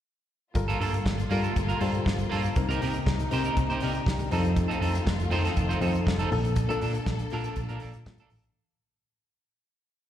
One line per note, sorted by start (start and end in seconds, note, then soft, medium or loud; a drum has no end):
0.54 0.71 G1 loud
0.54 2.54 A#2 medium
0.54 1.05 G3 medium
0.54 2.54 A#3 medium
0.54 2.54 F4 medium
0.54 1.05 F4 medium
0.54 1.05 A4 medium
0.54 1.05 A#4 medium
0.54 muted clean electric guitar stroke soft
0.54 kick loud
0.54 closed hi-hat medium
0.68 0.79 A#3 medium
0.68 0.79 F4 medium
0.68 0.80 A4 medium
0.68 closed hi-hat soft
0.80 0.97 G2 loud
0.80 0.95 A#3 medium
0.80 0.93 F4 medium
0.80 0.92 A4 medium
0.80 open hi-hat medium
0.93 muted clean electric guitar stroke soft
0.93 closed hi-hat medium
1.05 1.22 G1 medium
1.05 muted clean electric guitar stroke soft
1.05 kick loud
1.05 snare loud
1.18 muted clean electric guitar stroke soft
1.18 closed hi-hat soft
1.30 1.47 G2 medium
1.30 1.64 G3 medium
1.30 1.44 A#3 medium
1.30 1.43 F4 medium
1.30 1.64 F4 medium
1.30 1.65 A4 medium
1.30 1.42 A#4 medium
1.30 1.65 A#4 medium
1.30 open hi-hat medium
1.43 1.54 A#3 medium
1.43 1.55 F4 medium
1.43 1.55 A4 medium
1.43 closed hi-hat medium
1.55 1.73 G1 loud
1.55 muted clean electric guitar stroke soft
1.55 kick loud
1.55 closed hi-hat medium
1.69 1.78 A#3 medium
1.69 1.79 F4 medium
1.69 1.81 A#4 medium
1.69 closed hi-hat soft
1.79 1.97 G2 medium
1.79 2.31 G3 medium
1.79 1.95 A#3 medium
1.79 1.94 F4 medium
1.79 2.31 F4 medium
1.79 1.92 A4 medium
1.79 2.31 A4 medium
1.79 2.31 C5 medium
1.79 open hi-hat medium
1.94 muted clean electric guitar stroke soft
1.94 closed hi-hat soft
2.04 2.23 G1 medium
2.04 muted clean electric guitar stroke soft
2.04 kick loud
2.04 snare loud
2.18 muted clean electric guitar stroke soft
2.18 closed hi-hat medium
2.30 2.48 G2 medium
2.30 2.49 A#3 medium
2.30 2.44 F4 medium
2.30 2.42 A4 medium
2.30 open hi-hat medium
2.43 muted clean electric guitar stroke soft
2.43 closed hi-hat soft
2.56 2.73 C2 loud
2.56 2.65 C3 medium
2.56 4.31 C3 medium
2.56 4.30 A#3 medium
2.56 2.65 C4 medium
2.56 2.65 D#4 medium
2.56 4.30 D#4 medium
2.56 2.65 A#4 medium
2.56 muted clean electric guitar stroke soft
2.56 kick loud
2.56 closed hi-hat medium
2.68 3.09 C3 medium
2.68 3.10 C4 medium
2.68 3.10 D#4 medium
2.68 2.80 D#4 medium
2.68 2.81 G4 medium
2.68 2.82 A#4 medium
2.68 3.11 A#4 medium
2.68 closed hi-hat soft
2.81 2.99 C3 loud
2.81 2.96 D#4 medium
2.81 2.95 G4 medium
2.81 2.94 A#4 medium
2.81 open hi-hat medium
2.94 muted clean electric guitar stroke soft
2.94 closed hi-hat medium
3.06 3.23 C2 loud
3.06 muted clean electric guitar stroke soft
3.06 kick loud
3.06 snare loud
3.19 muted clean electric guitar stroke soft
3.19 closed hi-hat soft
3.31 3.97 C3 medium
3.31 3.49 C3 medium
3.31 3.98 C4 medium
3.31 3.46 D#4 medium
3.31 3.82 D#4 medium
3.31 3.46 G4 medium
3.31 3.82 A#4 medium
3.31 3.45 C5 medium
3.31 open hi-hat medium
3.45 3.56 D#4 soft
3.45 3.57 G4 medium
3.45 3.58 A#4 medium
3.45 closed hi-hat medium
3.57 3.73 C2 loud
3.57 muted clean electric guitar stroke soft
3.57 kick loud
3.57 closed hi-hat medium
3.70 3.81 D#4 medium
3.70 3.82 G4 medium
3.70 3.84 C5 medium
3.70 closed hi-hat soft
3.80 3.99 C3 medium
3.80 3.96 D#4 medium
3.80 3.95 G4 medium
3.80 3.94 A#4 medium
3.80 4.06 D5 soft
3.80 4.06 G5 medium
3.80 open hi-hat medium
3.95 muted clean electric guitar stroke soft
3.95 closed hi-hat soft
4.06 4.23 C2 medium
4.06 4.55 D4 medium
4.06 4.55 G4 medium
4.06 kick loud
4.06 snare loud
4.19 muted clean electric guitar stroke soft
4.19 closed hi-hat soft
4.31 4.65 F2 loud
4.31 6.30 D#3 medium
4.31 5.12 F3 medium
4.31 6.30 A3 medium
4.31 4.50 C4 medium
4.31 5.12 C4 medium
4.31 4.44 D#4 medium
4.31 5.13 D#4 medium
4.31 6.30 F4 medium
4.31 4.43 A4 medium
4.31 5.13 A4 medium
4.31 open hi-hat medium
4.44 muted clean electric guitar stroke soft
4.44 closed hi-hat soft
4.56 muted clean electric guitar stroke soft
4.56 kick loud
4.56 closed hi-hat medium
4.68 4.79 C4 medium
4.68 4.79 D#4 medium
4.68 4.81 A4 medium
4.68 closed hi-hat soft
4.80 4.98 F2 loud
4.80 4.96 C4 medium
4.80 4.94 D#4 medium
4.80 4.92 A4 medium
4.80 open hi-hat medium
4.93 muted clean electric guitar stroke soft
4.93 closed hi-hat medium
5.05 5.23 F1 medium
5.05 muted clean electric guitar stroke soft
5.05 kick loud
5.05 snare loud
5.19 muted clean electric guitar stroke soft
5.19 closed hi-hat soft
5.30 5.48 F2 loud
5.30 5.65 F3 medium
5.30 5.45 C4 medium
5.30 5.65 C4 medium
5.30 5.44 D#4 medium
5.30 5.66 D#4 medium
5.30 5.66 A4 medium
5.30 5.44 C5 medium
5.30 open hi-hat medium
5.44 5.55 C4 medium
5.44 5.55 D#4 medium
5.44 5.56 A4 medium
5.44 snare soft
5.44 closed hi-hat medium
5.56 5.74 F1 loud
5.56 muted clean electric guitar stroke soft
5.56 kick loud
5.56 closed hi-hat medium
5.69 5.80 C4 medium
5.69 5.80 D#4 medium
5.69 5.82 C5 medium
5.69 closed hi-hat soft
5.81 5.98 F2 medium
5.81 6.31 F3 medium
5.81 5.96 C4 medium
5.81 6.31 C4 medium
5.81 5.94 D#4 medium
5.81 6.31 D#4 medium
5.81 5.93 A4 medium
5.81 6.31 A4 medium
5.81 open hi-hat medium
5.94 muted clean electric guitar stroke soft
5.94 closed hi-hat soft
6.06 6.23 F1 loud
6.06 muted clean electric guitar stroke soft
6.06 kick loud
6.06 snare loud
6.19 6.31 C4 medium
6.19 6.32 D#4 medium
6.19 6.32 A4 medium
6.19 closed hi-hat soft
6.31 6.65 A#1 medium
6.31 6.62 A#2 medium
6.31 8.55 D3 medium
6.31 6.62 A#3 medium
6.31 8.55 A#3 medium
6.31 6.62 D4 medium
6.31 8.55 A4 medium
6.31 6.63 A4 loud
6.31 muted clean electric guitar stroke soft
6.31 open hi-hat medium
6.45 muted clean electric guitar stroke soft
6.45 closed hi-hat soft
6.56 muted clean electric guitar stroke soft
6.56 kick loud
6.56 closed hi-hat medium
6.69 7.10 A#2 medium
6.69 7.10 A#3 medium
6.69 6.80 A#3 medium
6.69 7.11 D4 medium
6.69 6.81 D4 medium
6.69 6.82 A4 medium
6.69 7.11 A4 medium
6.69 closed hi-hat soft
6.81 6.99 A#2 medium
6.81 6.96 A#3 medium
6.81 6.94 D4 medium
6.81 6.93 A4 medium
6.81 open hi-hat medium
6.94 muted clean electric guitar stroke soft
6.94 closed hi-hat medium
7.06 7.23 A#1 loud
7.06 muted clean electric guitar stroke soft
7.06 kick loud
7.06 snare loud
7.19 muted clean electric guitar stroke soft
7.19 closed hi-hat soft
7.30 7.49 A#2 medium
7.30 7.99 A#2 medium
7.30 7.45 A#3 medium
7.30 7.99 A#3 medium
7.30 7.44 D4 medium
7.30 7.99 D4 medium
7.30 7.44 A#4 medium
7.30 open hi-hat medium
7.34 7.99 A4 medium
7.44 7.55 A#3 medium
7.44 7.56 D4 medium
7.44 7.57 A4 medium
7.44 closed hi-hat medium
7.56 7.65 A#1 loud
7.56 muted clean electric guitar stroke soft
7.56 kick medium
7.56 closed hi-hat medium
7.69 7.78 A#2 medium
7.69 7.79 A#3 medium
7.69 7.80 D4 medium
7.69 7.82 A#4 medium
7.69 closed hi-hat soft
7.80 7.91 A#1 medium
7.80 7.96 A#3 medium
7.80 7.94 D4 medium
7.80 7.93 A4 medium
7.80 open hi-hat medium
7.94 8.03 A#2 medium
7.94 muted clean electric guitar stroke soft
7.94 closed hi-hat soft
8.06 8.23 A#2 loud
8.06 muted clean electric guitar stroke soft
8.06 kick loud
8.06 snare loud
8.18 8.31 D4 medium
8.18 8.32 A4 medium
8.18 closed hi-hat soft
8.22 8.30 A#3 medium
8.30 8.48 A1 medium
8.30 muted clean electric guitar stroke soft
8.30 open hi-hat medium
8.43 muted clean electric guitar stroke soft
8.43 closed hi-hat soft